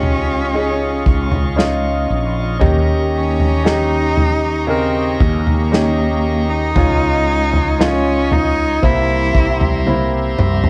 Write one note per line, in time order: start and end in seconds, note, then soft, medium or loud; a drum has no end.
0.00 1.03 C#2 medium
0.00 2.64 C#3 soft
0.00 2.64 G#3 medium
0.00 0.49 C#4 medium
0.00 1.60 C#4 medium
0.00 0.54 D#4 medium
0.00 1.58 F4 medium
0.00 2.58 F4 medium
0.00 0.50 G4 medium
0.00 8.79 D#5 soft
0.00 2.58 F5 medium
0.00 8.78 C#6 medium
0.00 floor tom medium
0.54 1.53 C#4 medium
0.54 1.53 D#4 medium
0.54 1.53 G#4 medium
1.06 2.06 C#2 medium
1.06 kick medium
1.32 floor tom medium
1.56 2.56 C#4 medium
1.56 2.56 D#4 medium
1.56 2.56 F4 medium
1.56 snare medium
2.10 2.58 A#1 medium
2.59 5.17 D#2 medium
2.59 4.12 D#3 medium
2.59 3.59 C#4 medium
2.59 3.60 D#4 medium
2.59 6.71 G4 medium
2.59 3.60 G4 medium
2.59 6.71 A#5 soft
2.59 kick medium
2.59 floor tom medium
3.17 3.69 C#4 medium
3.40 floor tom medium
3.64 4.63 C#4 medium
3.64 4.63 D#4 medium
3.64 4.68 D#4 medium
3.64 4.64 G4 medium
3.64 snare loud
4.17 floor tom medium
4.67 5.66 C#3 medium
4.67 5.23 C4 medium
4.67 5.67 D#4 medium
4.67 5.67 A#4 medium
5.20 6.72 D#2 medium
5.20 6.51 A#3 medium
5.20 kick medium
5.47 floor tom medium
5.72 6.70 C#4 medium
5.72 6.71 D#4 medium
5.72 6.71 G4 medium
5.72 snare medium
6.50 7.83 D#4 medium
6.76 8.79 C#2 medium
6.76 8.27 C#3 medium
6.76 7.74 C#4 medium
6.76 7.75 D#4 medium
6.76 8.81 F4 medium
6.76 7.75 F4 medium
6.76 8.81 G#5 medium
6.76 kick medium
6.76 floor tom medium
7.53 floor tom medium
7.79 8.78 C#4 medium
7.79 8.34 C#4 medium
7.79 8.78 D#4 medium
7.79 8.78 F4 medium
7.79 snare loud
8.32 8.87 D#4 medium
8.32 floor tom medium
8.82 9.31 C2 medium
8.82 10.34 C3 medium
8.82 9.81 A#3 medium
8.82 9.81 C4 medium
8.82 9.82 E4 medium
8.82 9.88 E4 loud
8.82 10.70 G4 medium
8.82 10.70 E5 medium
8.82 10.70 A#5 medium
8.82 10.70 C6 medium
8.82 kick medium
9.35 10.34 C2 medium
9.35 kick medium
9.61 floor tom medium
9.86 10.70 A#3 medium
9.86 10.70 C4 soft
9.86 10.70 E4 medium
9.86 high tom soft
10.38 10.70 C2 loud
10.38 mid tom medium
10.64 floor tom medium